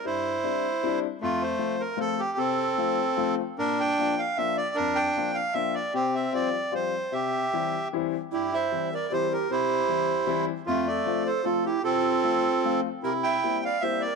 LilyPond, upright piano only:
\new Staff \with { instrumentName = "Upright piano" } { \time 3/4 \key f \major \tempo 4 = 153 g,4 <g c' d' e'>8 r8 <g c' d' e'>8 r8 | f,4 <f a c' f'>8 r8 <f a c' f'>8 r8 | c4 <f a c' f'>8 r8 <f a c' f'>8 r8 | bes,4 <f bes d' f'>8 r8 <f bes d' f'>8 r8 |
f,4 <f bes d' f'>8 r8 <f bes d' f'>8 r8 | c4 <f g c' f'>8 r8 <f g c' f'>8 r8 | c4 <e g c' e'>8 r8 <e g c' e'>8 r8 | g,4 <e g c' e'>8 r8 <e g c' e'>8 r8 |
c4 <e g c' e'>8 r8 <e g c' e'>8 r8 | f,4 <f a c' f'>8 r8 <f a c' f'>8 r8 | c4 <f a c' f'>8 r8 <f a c' f'>8 r8 | c4 <g bes c' e'>8 r8 <g bes c' e'>8 r8 | }